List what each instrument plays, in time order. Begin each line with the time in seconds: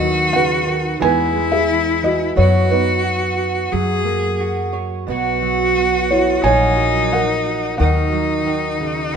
Already playing: upright bass D#2, steel-string acoustic guitar D#3 B3 B4, felt piano F#4 D#5, cello F#4
0.00 steel-string acoustic guitar F#3
0.33 steel-string acoustic guitar C#3, felt piano B4 F#5
0.67 steel-string acoustic guitar D#3
1.00 upright bass E2, steel-string acoustic guitar E3 G#3 B3 G#4, cello E4, felt piano G#5
1.04 felt piano B4
1.35 steel-string acoustic guitar G#3
1.52 felt piano G#4 E5
2.02 steel-string acoustic guitar E3, felt piano F#4 D#5
2.36 upright bass F#2, steel-string acoustic guitar F#3 B3 F#4 B4, felt piano F#4 C#5, cello F#4
2.71 steel-string acoustic guitar B3, felt piano D#4 B4
3.04 steel-string acoustic guitar F#4
3.38 steel-string acoustic guitar F#4
3.72 upright bass F#2, steel-string acoustic guitar F#3 F#4, cello G#4
4.05 steel-string acoustic guitar A#3
4.40 steel-string acoustic guitar F#4
4.73 steel-string acoustic guitar C#5
5.07 upright bass B1, steel-string acoustic guitar B2 F#3 B3 F#4 C#5, cello F#4
5.42 steel-string acoustic guitar F#3
5.77 steel-string acoustic guitar B3
6.11 felt piano E4 C#5, steel-string acoustic guitar F#4
6.42 upright bass A#1, steel-string acoustic guitar A#2 F#3 D#4, cello D#4, felt piano C#5 G#5
6.46 steel-string acoustic guitar F#4 A#4
6.76 steel-string acoustic guitar F#3
7.12 steel-string acoustic guitar D#4, felt piano A#4 F#5
7.46 steel-string acoustic guitar F#4
7.78 upright bass D#2, steel-string acoustic guitar D#3 F#3 D#4 F#4 A#4, cello D#4, felt piano A#4 F#5
8.12 steel-string acoustic guitar F#3
8.46 steel-string acoustic guitar D#3
8.81 steel-string acoustic guitar C#3
9.13 cello F#4